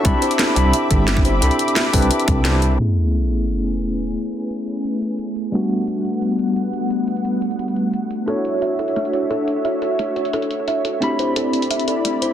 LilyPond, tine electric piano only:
\new Staff \with { instrumentName = "Tine electric piano" } { \time 4/4 \key a \major \tempo 4 = 175 <c' d' e' g' b''>4. <c' d' e' g' b''>2~ <c' d' e' g' b''>8 | <c' d' e' g' b''>4. <c' d' e' g' b'>8 r4 <c' d' e' g' c''>4 | <a b cis' e' gis'>1~ | <a b cis' e' gis'>1 |
<g a b d' fis'>1~ | <g a b d' fis'>1 | <d' e' fis' a' cis''>1~ | <d' e' fis' a' cis''>1 |
<c' d' e' g' b''>1 | }